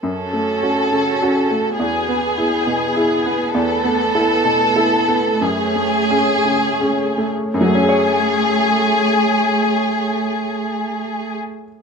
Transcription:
0.02 F#2 C#4 F#4 A4
0.33 A3
0.63 C#4 F#4
0.92 C#3
1.22 C#4 F#4
1.51 A3
1.79 E2 B3 G#4 B4
2.09 B3
2.37 E4 G#4
2.67 B2
2.96 E4 G#4
3.26 B3
3.53 E2 A3 A4
3.84 B3
4.15 E4 A4
4.45 B2
4.76 E4 A4
5.08 B3
5.41 F#2 A3 G#4 C#5
5.76 A3
6.10 C#4 G#4
6.45 C#3
6.80 C#4 G#4
7.18 A3
7.54 F#2 A3 G#4 C#5
7.61 F#3
7.68 A3
7.75 C#4
7.82 G#4
7.89 C#5

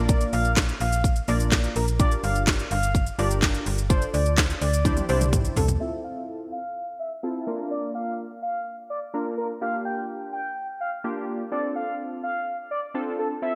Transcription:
Already playing: A#1 A#3 D4 F4 A#4 D5
0.09 D5, kick, closed hi-hat, shaker
0.21 closed hi-hat, shaker
0.33 A#1 F5, open hi-hat, shaker
0.45 closed hi-hat, shaker
0.57 kick, snare, clap, closed hi-hat, shaker
0.69 closed hi-hat, shaker
0.81 A#1 F5, open hi-hat, shaker
0.92 closed hi-hat, shaker
1.04 kick, closed hi-hat, shaker
1.16 closed hi-hat, shaker
1.28 A#1 A#3 D4 F4 A#4 D5, open hi-hat, shaker
1.40 closed hi-hat, shaker
1.52 kick, snare, clap, closed hi-hat, shaker
1.64 closed hi-hat, shaker
1.76 A#1 A#4, open hi-hat, shaker
1.88 closed hi-hat, shaker
1.99 D4 F4 G4 A#4 D5, kick, closed hi-hat, shaker
2.11 closed hi-hat, shaker
2.24 G1 F5, open hi-hat, shaker
2.35 closed hi-hat, shaker
2.47 kick, snare, clap, closed hi-hat, shaker
2.59 closed hi-hat, shaker
2.71 G1 F5, open hi-hat, shaker
2.83 closed hi-hat, shaker
2.95 kick, closed hi-hat, shaker
3.07 closed hi-hat, shaker
3.18 G1 D4 F4 G4 A#4 D5, open hi-hat, shaker
3.31 closed hi-hat, shaker
3.42 kick, snare, clap, closed hi-hat, shaker
3.54 closed hi-hat, shaker
3.66 G1, open hi-hat, shaker
3.78 closed hi-hat, shaker
3.89 D4 F4 A4 C5 D5, kick, closed hi-hat, shaker
4.02 closed hi-hat, shaker
4.14 D2 D5, open hi-hat, shaker
4.26 closed hi-hat, shaker
4.38 kick, snare, clap, closed hi-hat, shaker
4.50 closed hi-hat, shaker
4.61 D2 D5, open hi-hat, shaker
4.73 closed hi-hat, shaker
4.85 D4 E4 G4 C5 D5, kick, closed hi-hat, high tom, shaker
4.97 closed hi-hat, high tom, shaker
5.09 C2 D4 E4 G4 C5 D5, open hi-hat, shaker
5.21 closed hi-hat, mid tom, shaker
5.33 kick, closed hi-hat, mid tom, shaker
5.45 closed hi-hat, shaker
5.57 C2 A4, floor tom, open hi-hat, shaker
5.68 closed hi-hat, floor tom, shaker
5.80 C4 E4 F4 A4 E5
6.04 F5
6.52 F5
6.99 E5
7.23 C4 E4 F4 A4
7.47 A#3 D4 F4 A#4
7.71 D5
7.95 F5
8.42 F5
8.90 D5
9.14 A#3 D4 F4 A#4
9.37 A#4
9.61 A#3 D4 F4 G4 F5
9.85 G5
10.33 G5
10.81 F5
11.04 A#3 D4 F4 G4
11.52 C4 D4 F4 A4 D5
11.76 F5
12.23 F5
12.71 D5
12.94 C4 D4 F4 A4
13.19 A4
13.42 C4 E4 F4 A4 E5

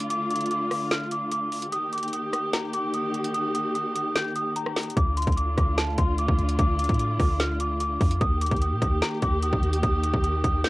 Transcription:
Already playing: D3 A3 F4
0.00 closed hi-hat
0.10 D6, closed hi-hat
0.30 D6, closed hi-hat
0.36 closed hi-hat
0.41 closed hi-hat
0.46 closed hi-hat
0.51 D6, closed hi-hat
0.71 D6, cross-stick, open hi-hat
0.91 F6, snare, closed hi-hat
1.11 D6, closed hi-hat
1.32 D6, closed hi-hat
1.52 closed hi-hat, open hi-hat
1.62 closed hi-hat
1.72 D#3 A#3 G4 D#6, closed hi-hat
1.93 D6, closed hi-hat
1.98 closed hi-hat
2.03 closed hi-hat
2.08 closed hi-hat
2.13 D#6, closed hi-hat
2.33 D#6, cross-stick, closed hi-hat
2.53 A#5, snare, closed hi-hat
2.74 D6, closed hi-hat
2.94 D#6, closed hi-hat
3.14 closed hi-hat
3.24 closed hi-hat
3.34 D#6, closed hi-hat
3.55 D#6, closed hi-hat
3.75 D#6, closed hi-hat
3.95 D#6, closed hi-hat
4.16 G6, snare, closed hi-hat
4.36 D#6, closed hi-hat
4.56 A#5, closed hi-hat
4.66 cross-stick
4.76 snare, closed hi-hat, open hi-hat
4.83 closed hi-hat
4.90 closed hi-hat
4.96 D2 D3 A3 F4 D6, kick, closed hi-hat
5.17 C6, closed hi-hat
5.22 closed hi-hat
5.27 D2, kick, closed hi-hat
5.32 closed hi-hat
5.37 D6, closed hi-hat
5.58 D2 D6, kick, cross-stick, closed hi-hat
5.77 A5, snare, closed hi-hat
5.98 D2 C6, kick, closed hi-hat
6.18 D6, closed hi-hat
6.28 D2, kick
6.39 D2, closed hi-hat
6.49 closed hi-hat
6.59 D2 D6, kick, closed hi-hat
6.79 D6, closed hi-hat
6.84 closed hi-hat
6.89 A2, kick, closed hi-hat
6.94 closed hi-hat
6.99 D6, closed hi-hat
7.20 D2 D6, kick, cross-stick, open hi-hat
7.40 F6, snare, closed hi-hat
7.60 D6, closed hi-hat
7.80 D6, closed hi-hat
8.01 F2, kick, closed hi-hat, open hi-hat
8.11 closed hi-hat
8.21 D#2 D#3 A#3 G4 D#6, kick, closed hi-hat
8.41 D6, closed hi-hat
8.46 closed hi-hat
8.51 D#2, kick, closed hi-hat
8.56 closed hi-hat
8.62 D#6, closed hi-hat
8.72 A#2
8.82 D#2 D#6, kick, cross-stick, closed hi-hat
9.02 A#5, snare, closed hi-hat
9.22 D#2 D6, kick, closed hi-hat
9.42 D#6, closed hi-hat
9.53 D#2, kick
9.63 D#2, closed hi-hat
9.73 closed hi-hat
9.83 D#2 D#6, kick, closed hi-hat
10.03 D#6, closed hi-hat
10.14 D#2, kick
10.24 D#6, closed hi-hat
10.44 D#2 D#6, kick, closed hi-hat
10.64 G6, snare, closed hi-hat

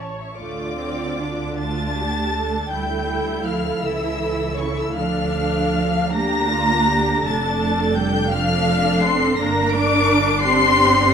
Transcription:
Already playing: A1
0.00 C#5 A5
0.20 E5 C#6
0.36 D2 A3 F4 D5 D6
0.40 D3
0.79 C4
1.20 D4
1.58 A3 F4 A5 A6
1.98 G4
2.35 A4
2.70 D2 G3 E4 A4 G5 G6
3.45 F3 F5 F6
3.82 C#2 E3 E4 E5 E6
4.56 C#3 C#5 C#6
4.75 E3 E5 E6
4.93 D2 F3 D4 F5 F6
6.11 A#3 D4 G4 A#5 A#6
6.52 F4
6.87 G4
7.23 F1 A3 D4 A4 A5 A6
7.95 G3 G5 G6
8.32 F3 D4 A4 F5 F6
9.01 C4 C6 C7
9.36 G1 A#3 D4 A#4 A#6
9.40 A#5
9.69 D7
9.73 D4 D6
10.41 C4 G4 C6 C7

